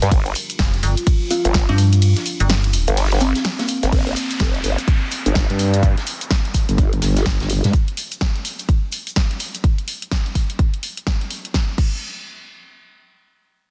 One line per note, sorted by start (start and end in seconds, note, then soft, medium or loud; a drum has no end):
0.00 0.10 G2 loud
0.00 3.88 G3 medium
0.00 3.88 D4 medium
0.00 0.11 A#4 loud
0.00 snare soft
0.00 closed hi-hat medium
0.00 cabasa medium
0.11 0.34 G1 loud
0.11 3.92 F4 loud
0.11 kick loud
0.11 closed hi-hat medium
0.11 ride medium
0.11 cabasa soft
0.26 closed hi-hat soft
0.35 closed hi-hat medium
0.35 open hi-hat loud
0.35 cabasa medium
0.50 closed hi-hat medium
0.50 cabasa medium
0.59 0.81 F1 loud
0.59 kick loud
0.59 snare loud
0.59 closed hi-hat loud
0.59 closed hi-hat medium
0.59 ride medium
0.59 cabasa soft
0.74 closed hi-hat soft
0.83 0.95 G1 loud
0.83 closed hi-hat medium
0.83 open hi-hat medium
0.83 cabasa medium
0.97 closed hi-hat medium
0.97 cabasa medium
1.07 kick loud
1.07 closed hi-hat medium
1.07 open hi-hat medium
1.07 ride medium
1.07 cabasa soft
1.31 1.40 F4 medium
1.31 closed hi-hat medium
1.31 open hi-hat loud
1.31 cabasa medium
1.45 1.67 G1 loud
1.45 1.51 F4 medium
1.45 closed hi-hat medium
1.45 cabasa medium
1.54 kick loud
1.54 snare loud
1.54 closed hi-hat medium
1.54 ride medium
1.54 cabasa soft
1.69 2.14 G2 loud
1.69 1.80 D4 medium
1.69 closed hi-hat soft
1.78 closed hi-hat medium
1.78 open hi-hat medium
1.78 cabasa medium
1.93 closed hi-hat medium
1.93 cabasa soft
2.02 closed hi-hat medium
2.02 ride medium
2.02 cabasa soft
2.16 snare soft
2.16 closed hi-hat soft
2.25 closed hi-hat medium
2.25 open hi-hat loud
2.25 cabasa medium
2.40 2.86 G1 loud
2.40 closed hi-hat medium
2.40 cabasa medium
2.49 snare loud
2.49 closed hi-hat medium
2.49 ride medium
2.49 cabasa soft
2.64 closed hi-hat soft
2.73 closed hi-hat medium
2.73 open hi-hat medium
2.73 cabasa loud
2.87 3.33 G1 medium
2.87 closed hi-hat medium
2.87 closed hi-hat soft
2.87 cabasa soft
2.97 snare medium
2.97 closed hi-hat medium
2.97 ride medium
2.97 cabasa soft
3.05 snare medium
3.05 closed hi-hat medium
3.12 snare loud
3.12 closed hi-hat soft
3.12 closed hi-hat medium
3.16 snare medium
3.16 closed hi-hat medium
3.20 3.36 C4 medium
3.20 snare loud
3.20 closed hi-hat medium
3.20 open hi-hat loud
3.20 cabasa loud
3.35 snare loud
3.35 closed hi-hat medium
3.35 cabasa soft
3.44 snare loud
3.44 closed hi-hat medium
3.44 ride medium
3.44 cabasa soft
3.59 3.92 A#3 medium
3.59 snare loud
3.59 closed hi-hat soft
3.59 closed hi-hat medium
3.68 closed hi-hat medium
3.68 open hi-hat medium
3.68 cabasa medium
3.83 3.91 G1 loud
3.83 snare medium
3.83 closed hi-hat medium
3.83 cabasa medium
3.92 4.15 G1 medium
3.92 kick loud
3.92 closed hi-hat medium
3.92 downlifter medium
3.92 cabasa soft
4.07 closed hi-hat soft
4.16 closed hi-hat medium
4.16 open hi-hat loud
4.16 cabasa medium
4.31 closed hi-hat medium
4.31 cabasa medium
4.39 4.62 F1 loud
4.39 kick loud
4.39 snare loud
4.39 closed hi-hat medium
4.39 cabasa soft
4.55 closed hi-hat soft
4.64 4.76 G1 medium
4.64 open hi-hat medium
4.64 cabasa medium
4.78 closed hi-hat medium
4.78 cabasa medium
4.87 kick loud
4.87 closed hi-hat medium
4.87 open hi-hat medium
4.87 cabasa soft
5.11 closed hi-hat medium
5.11 open hi-hat loud
5.11 cabasa loud
5.26 5.47 G1 medium
5.26 closed hi-hat medium
5.26 cabasa medium
5.35 kick loud
5.35 snare loud
5.35 closed hi-hat medium
5.35 cabasa soft
5.50 5.95 G2 loud
5.50 closed hi-hat soft
5.59 closed hi-hat medium
5.59 open hi-hat medium
5.59 cabasa medium
5.74 closed hi-hat medium
5.74 cabasa medium
5.83 kick loud
5.83 closed hi-hat medium
5.83 cabasa soft
5.97 snare soft
5.97 closed hi-hat soft
6.06 closed hi-hat medium
6.06 open hi-hat loud
6.06 cabasa medium
6.21 closed hi-hat medium
6.21 cabasa medium
6.30 kick loud
6.30 snare loud
6.30 closed hi-hat medium
6.30 cabasa soft
6.45 closed hi-hat soft
6.54 kick medium
6.54 closed hi-hat medium
6.54 open hi-hat medium
6.54 cabasa loud
6.69 7.00 G1 medium
6.69 closed hi-hat medium
6.69 closed hi-hat soft
6.69 cabasa soft
6.78 kick loud
6.78 closed hi-hat medium
6.78 cabasa soft
6.93 closed hi-hat soft
7.02 7.38 G1 medium
7.02 snare loud
7.02 closed hi-hat medium
7.02 open hi-hat loud
7.02 cabasa loud
7.16 snare loud
7.16 closed hi-hat medium
7.16 cabasa soft
7.26 kick loud
7.26 snare loud
7.26 closed hi-hat medium
7.26 cabasa soft
7.40 7.62 G1 medium
7.40 snare loud
7.40 closed hi-hat medium
7.40 closed hi-hat soft
7.50 closed hi-hat medium
7.50 open hi-hat medium
7.50 cabasa medium
7.64 7.72 G2 medium
7.64 snare medium
7.64 closed hi-hat medium
7.64 cabasa soft
7.73 kick loud
7.73 closed hi-hat medium
7.73 cabasa soft
7.88 closed hi-hat soft
7.97 open hi-hat loud
7.97 cabasa medium
8.11 closed hi-hat soft
8.11 cabasa medium
8.21 kick loud
8.21 snare loud
8.21 closed hi-hat medium
8.21 cabasa soft
8.35 closed hi-hat soft
8.45 open hi-hat medium
8.45 cabasa medium
8.59 closed hi-hat soft
8.59 cabasa medium
8.69 kick loud
8.69 closed hi-hat medium
8.69 cabasa soft
8.92 open hi-hat loud
8.92 cabasa medium
9.07 closed hi-hat medium
9.07 cabasa medium
9.16 kick loud
9.16 snare loud
9.16 closed hi-hat medium
9.16 cabasa soft
9.31 closed hi-hat soft
9.40 open hi-hat medium
9.40 cabasa medium
9.55 closed hi-hat soft
9.55 cabasa medium
9.64 kick loud
9.64 closed hi-hat medium
9.78 closed hi-hat soft
9.88 open hi-hat loud
10.02 closed hi-hat soft
10.11 kick loud
10.11 snare loud
10.11 closed hi-hat medium
10.26 closed hi-hat soft
10.35 kick medium
10.35 open hi-hat medium
10.50 closed hi-hat soft
10.59 kick loud
10.59 closed hi-hat medium
10.74 closed hi-hat soft
10.83 open hi-hat loud
10.97 closed hi-hat soft
11.07 kick loud
11.07 snare loud
11.07 closed hi-hat medium
11.21 closed hi-hat soft
11.30 open hi-hat medium
11.45 closed hi-hat soft
11.54 kick loud
11.54 snare medium
11.78 kick loud
11.78 crash medium